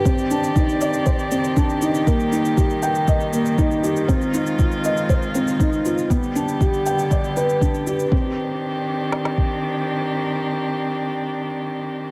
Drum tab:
SH |xxxxxxxxxxxxxxxx|xxxxxxxxxxxxxxxx|xxxxxxxxxxxxxxxx|xxxxxxxxxxxxxxxx|
SD |----------------|----------------|----------------|----------------|
BD |o---o---o---o---|o---o---o---o---|o---o---o---o---|o---o---o---o---|

SH |----------------|----------------|
SD |--------oo------|----------------|
BD |o---------o-----|----------------|